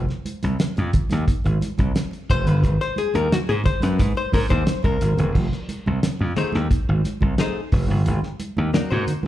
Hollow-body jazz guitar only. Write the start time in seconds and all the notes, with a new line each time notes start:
Already playing: C5
2.30 C5
2.47 B4
2.81 C5
2.98 G#4
3.15 A#4
3.33 F#4
3.49 G#4
3.66 C5
3.82 B4
4.17 C5
4.34 A#4
4.50 C5
4.84 A#4
6.37 A3 D#4 G#4 C5
7.39 A3 D#4 G#4 C5
8.74 A#3 D#4 F#4 D5
8.91 A#3 D#4 F#4 C5